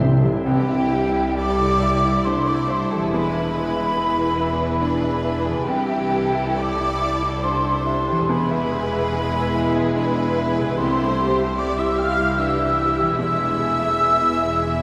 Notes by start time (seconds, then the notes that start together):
Already playing: C2 C3 G3 D4 E4 G4 E5 G5 E6
0.00 C3 G4 E5
0.09 C3
0.17 C3
0.23 C3 E4 G4
0.27 C3
0.32 C3 E4
0.37 G4
0.41 C2 E3 E4 G4 E5 G5
0.45 C2 G4
0.69 E5
0.91 G3 G4
1.16 E5
1.37 E4 G4 A4 D5 D6
1.61 E4
1.82 G4 E5
2.04 E4
2.25 A3 D4 E4 C5 C6
2.47 E4 D5 D6
2.69 C5 E5 C6
2.90 E3 G4 A4 A5
2.99 E4
3.03 G#4
3.08 E2 E4 E5
3.12 E1 E2 G#3 B4 B5
3.33 E5
3.54 G#3 G#4
3.76 E5
3.96 E3 E4 G#4
4.18 E4
4.39 G#4 E5
4.62 E4
4.80 D4 B4 B5
5.04 E4
5.23 D4 E5
5.45 C3 G#4
5.53 C4
5.58 G4
5.63 C2 E3 E4 G4 G5
5.67 C2 G5
5.89 E5
6.11 G4 A4
6.35 E5
6.56 A3 G4 D5 D6
6.80 E4
6.99 G3 E5
7.23 E4
7.42 G3 D4 E4 C5 C6
7.65 E4
7.85 D4 E5
8.09 E3 G4
8.20 G#4
8.27 E1 E2 G#3 E4 G#4 B4 B5
8.51 E5
8.70 G#4
8.92 E5
9.11 E4 G#4
9.34 E4
9.54 E4 E5
9.76 E4
9.96 D4 E4 B4 B5
10.18 E4
10.38 E5
10.58 C3 G#4
10.69 G4
10.77 C2 A3 E4 G4 C5 C6
10.99 E5
11.17 G4
11.38 E5
11.58 G3 E4 G4 D5 D6
11.78 E4 E5 E6
11.98 F5 G5 F6
12.19 E4
12.38 E3 D4 E5 E6
12.59 E4
12.79 E5
12.99 E3 G4
13.05 E4
13.09 G#4
13.14 E2 G#3 E4 E5
13.19 E1 E2 E5 E6
13.38 E5
13.58 A3 G#4
13.79 E5
14.00 B3 E4 G#4
14.21 E4
14.42 G#3 E5
14.63 E4